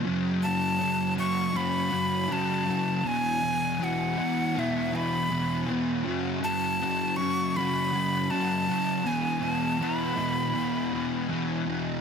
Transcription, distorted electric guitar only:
X:1
M:4/4
L:1/8
Q:1/4=80
K:F#dor
V:1 name="Distorted electric guitar" clef=bass
[F,,C,F,] [C,F,] [F,,C,F,] [C,F,] [F,,C,F,] [C,F,] [F,,C,F,] [C,F,] | [E,,B,,E,] [B,,E,] [E,,B,,E,] [B,,E,] [E,,B,,E,] [B,,E,] [E,,B,,E,] [B,,E,] | [F,,C,F,] [C,F,] [F,,C,F,] [C,F,] [F,,C,F,] [C,F,] [F,,C,F,] [C,F,] | [E,,B,,E,] [B,,E,] [E,,B,,E,] [B,,E,] [E,,B,,E,] [B,,E,] [E,,B,,E,] [B,,E,] |]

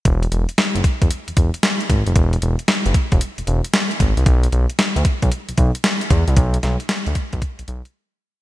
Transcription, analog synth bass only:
X:1
M:4/4
L:1/16
Q:"Swing 16ths" 1/4=114
K:Bdor
V:1 name="Analog synth bass" clef=bass
E,,,2 E,,, z2 F,,, z E,,, z E,,, E,,, z3 G,,, ^E,,, | E,,,2 E,,, z2 F,,, z E,,, z E,,, E,,, z3 G,,, =C,, | B,,,2 B,,, z2 D,, z B,,, z B,,, B,,, z3 E,, =C,, | B,,,2 B,,, z2 D,, z B,,, z B,,, B,,, z4 z |]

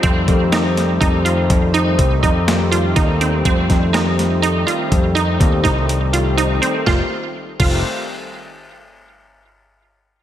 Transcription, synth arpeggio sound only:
X:1
M:7/4
L:1/8
Q:1/4=123
K:Fmix
V:1 name="Synth arpeggio sound"
C2 E2 E F2 E2 E2 F E C | C2 E2 E F2 E2 E2 F E C | F z2 F z8 z2 |]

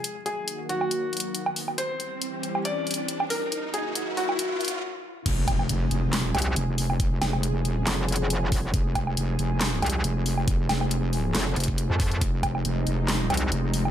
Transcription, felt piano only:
X:1
M:4/4
L:1/8
Q:"Swing 16ths" 1/4=138
K:Fphr
V:1 name="Felt piano"
A A z G4- G | c4 =d3 B | z A z G3 z2 | z8 |
z8 | z8 | z8 | z8 |]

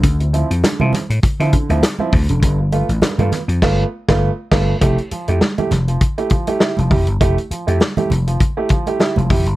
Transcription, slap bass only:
X:1
M:4/4
L:1/16
Q:"Swing 16ths" 1/4=100
K:Flyd
V:1 name="Slap bass" clef=bass
D,,3 F,, z C, z A,, z D, z D,, z2 D,, F,,, | G,,,3 A,,, z G,, z F,, G,,,2 z G,,,2 z G,,,2 | F,,, z2 F,, z2 F,,,2 z4 z F,,, F,,, G,,, | F,,, z2 F,, z2 F,,,2 z4 z F,,, F,,, G,,, |]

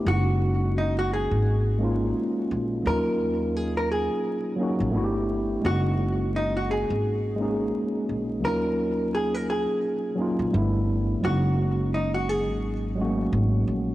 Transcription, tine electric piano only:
X:1
M:4/4
L:1/8
Q:"Swing 16ths" 1/4=86
K:Gblyd
V:1 name="Tine electric piano"
[A,B,DEG]3 z2 [A,B,DEF]2 z | [G,B,DEF]3 z2 [G,B,DEG] [=A,=B,=D=EG=G]2 | [A,B,DEG]3 z2 [A,B,DEA]2 z | [G,B,DEF]3 z2 [G,B,DEF] [=G,=A,=B,=D=E]2 |
[G,A,B,DE]3 z2 [G,A,=A,B,DG]2 z |]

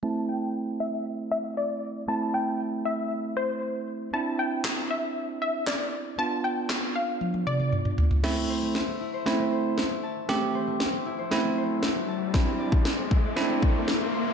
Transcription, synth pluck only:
X:1
M:4/4
L:1/16
Q:1/4=117
K:Am
V:1 name="Synth pluck"
a2 g2 z2 e3 z e z d3 z | a2 g2 z2 e3 z c z4 z | a2 g2 z2 e3 z e z d3 z | a2 g2 z2 f3 z d z4 z |
z16 | z16 | z16 |]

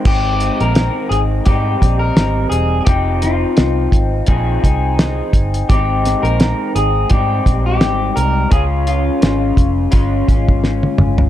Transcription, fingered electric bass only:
X:1
M:4/4
L:1/16
Q:"Swing 16ths" 1/4=85
K:Ab
V:1 name="Fingered electric bass" clef=bass
A,,,3 B,,,2 z A,,,2 A,,2 B,,,2 A,,,2 _F,,,2 | F,,,4 C,,2 A,,,2 B,,,2 C,,4 G,,,2 | A,,,3 B,,,2 z A,,,2 A,,2 B,,,2 A,,,2 C,,2 | D,,4 A,,,2 F,,,2 G,,,2 A,,,4 G,,,2 |]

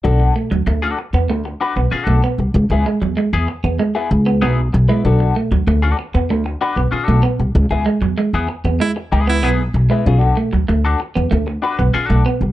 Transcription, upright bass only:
X:1
M:4/4
L:1/16
Q:1/4=96
K:Bdor
V:1 name="Upright bass" clef=bass
B,,,2 z D,, D,,2 z E,, D,,2 z B,,, z B,,, z =C,, | C,, C,, z E,, z E,, z E,, z2 C,,2 B,,,2 B,,, z | B,,,2 z D,, D,,2 z E,, D,,2 z B,,, z B,,, z =C,, | C,, C,, z E,, z E,, z E,, z2 C,,2 B,,,2 B,,, z |
B,,,2 z D,, D,,2 z E,, D,,2 z B,,, z B,,, z =C,, |]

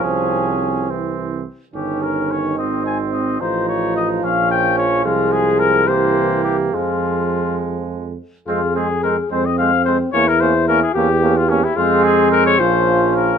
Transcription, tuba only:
X:1
M:6/8
L:1/8
Q:3/8=72
K:Fm
V:1 name="Tuba" clef=bass
C,,4- C,, z | G,,,3 A,,,3 | =A,,,3 B,,,3 | C,,6 |
F,,4- F,, z | F,,3 F,,3 | =E,,3 E,,3 | F,,3 B,,,3 |]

